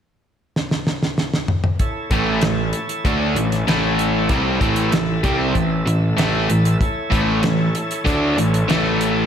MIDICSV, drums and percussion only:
0, 0, Header, 1, 2, 480
1, 0, Start_track
1, 0, Key_signature, 3, "major"
1, 0, Tempo, 626305
1, 1380, Time_signature, 4, 2, 24, 8
1, 7098, End_track
2, 0, Start_track
2, 0, Title_t, "Drums"
2, 431, Note_on_c, 9, 38, 67
2, 508, Note_off_c, 9, 38, 0
2, 547, Note_on_c, 9, 38, 76
2, 623, Note_off_c, 9, 38, 0
2, 664, Note_on_c, 9, 38, 81
2, 741, Note_off_c, 9, 38, 0
2, 786, Note_on_c, 9, 38, 78
2, 863, Note_off_c, 9, 38, 0
2, 903, Note_on_c, 9, 38, 82
2, 979, Note_off_c, 9, 38, 0
2, 1023, Note_on_c, 9, 38, 85
2, 1100, Note_off_c, 9, 38, 0
2, 1137, Note_on_c, 9, 45, 95
2, 1213, Note_off_c, 9, 45, 0
2, 1254, Note_on_c, 9, 45, 102
2, 1331, Note_off_c, 9, 45, 0
2, 1375, Note_on_c, 9, 42, 70
2, 1377, Note_on_c, 9, 36, 95
2, 1452, Note_off_c, 9, 42, 0
2, 1454, Note_off_c, 9, 36, 0
2, 1615, Note_on_c, 9, 42, 73
2, 1617, Note_on_c, 9, 36, 107
2, 1692, Note_off_c, 9, 42, 0
2, 1693, Note_off_c, 9, 36, 0
2, 1850, Note_on_c, 9, 42, 74
2, 1860, Note_on_c, 9, 38, 111
2, 1927, Note_off_c, 9, 42, 0
2, 1936, Note_off_c, 9, 38, 0
2, 2091, Note_on_c, 9, 42, 75
2, 2168, Note_off_c, 9, 42, 0
2, 2217, Note_on_c, 9, 42, 66
2, 2293, Note_off_c, 9, 42, 0
2, 2336, Note_on_c, 9, 36, 105
2, 2337, Note_on_c, 9, 42, 70
2, 2413, Note_off_c, 9, 36, 0
2, 2414, Note_off_c, 9, 42, 0
2, 2577, Note_on_c, 9, 42, 69
2, 2654, Note_off_c, 9, 42, 0
2, 2699, Note_on_c, 9, 42, 70
2, 2709, Note_on_c, 9, 38, 31
2, 2776, Note_off_c, 9, 42, 0
2, 2785, Note_off_c, 9, 38, 0
2, 2821, Note_on_c, 9, 42, 71
2, 2830, Note_on_c, 9, 38, 105
2, 2897, Note_off_c, 9, 42, 0
2, 2907, Note_off_c, 9, 38, 0
2, 3058, Note_on_c, 9, 42, 79
2, 3135, Note_off_c, 9, 42, 0
2, 3290, Note_on_c, 9, 42, 75
2, 3293, Note_on_c, 9, 36, 95
2, 3366, Note_off_c, 9, 42, 0
2, 3370, Note_off_c, 9, 36, 0
2, 3533, Note_on_c, 9, 36, 105
2, 3535, Note_on_c, 9, 42, 66
2, 3610, Note_off_c, 9, 36, 0
2, 3612, Note_off_c, 9, 42, 0
2, 3648, Note_on_c, 9, 42, 65
2, 3725, Note_off_c, 9, 42, 0
2, 3773, Note_on_c, 9, 42, 68
2, 3782, Note_on_c, 9, 38, 109
2, 3850, Note_off_c, 9, 42, 0
2, 3859, Note_off_c, 9, 38, 0
2, 4014, Note_on_c, 9, 42, 70
2, 4015, Note_on_c, 9, 36, 97
2, 4091, Note_off_c, 9, 42, 0
2, 4092, Note_off_c, 9, 36, 0
2, 4255, Note_on_c, 9, 36, 79
2, 4255, Note_on_c, 9, 42, 59
2, 4332, Note_off_c, 9, 36, 0
2, 4332, Note_off_c, 9, 42, 0
2, 4501, Note_on_c, 9, 42, 71
2, 4578, Note_off_c, 9, 42, 0
2, 4738, Note_on_c, 9, 42, 66
2, 4747, Note_on_c, 9, 38, 105
2, 4815, Note_off_c, 9, 42, 0
2, 4824, Note_off_c, 9, 38, 0
2, 4979, Note_on_c, 9, 42, 66
2, 5055, Note_off_c, 9, 42, 0
2, 5100, Note_on_c, 9, 42, 71
2, 5176, Note_off_c, 9, 42, 0
2, 5217, Note_on_c, 9, 36, 107
2, 5221, Note_on_c, 9, 42, 71
2, 5293, Note_off_c, 9, 36, 0
2, 5297, Note_off_c, 9, 42, 0
2, 5456, Note_on_c, 9, 36, 109
2, 5458, Note_on_c, 9, 42, 72
2, 5533, Note_off_c, 9, 36, 0
2, 5534, Note_off_c, 9, 42, 0
2, 5693, Note_on_c, 9, 42, 70
2, 5702, Note_on_c, 9, 38, 106
2, 5769, Note_off_c, 9, 42, 0
2, 5779, Note_off_c, 9, 38, 0
2, 5939, Note_on_c, 9, 42, 73
2, 6015, Note_off_c, 9, 42, 0
2, 6060, Note_on_c, 9, 42, 69
2, 6137, Note_off_c, 9, 42, 0
2, 6180, Note_on_c, 9, 36, 94
2, 6183, Note_on_c, 9, 42, 69
2, 6256, Note_off_c, 9, 36, 0
2, 6260, Note_off_c, 9, 42, 0
2, 6424, Note_on_c, 9, 42, 80
2, 6501, Note_off_c, 9, 42, 0
2, 6546, Note_on_c, 9, 42, 76
2, 6622, Note_off_c, 9, 42, 0
2, 6664, Note_on_c, 9, 42, 70
2, 6673, Note_on_c, 9, 38, 105
2, 6740, Note_off_c, 9, 42, 0
2, 6750, Note_off_c, 9, 38, 0
2, 6904, Note_on_c, 9, 42, 81
2, 6981, Note_off_c, 9, 42, 0
2, 7098, End_track
0, 0, End_of_file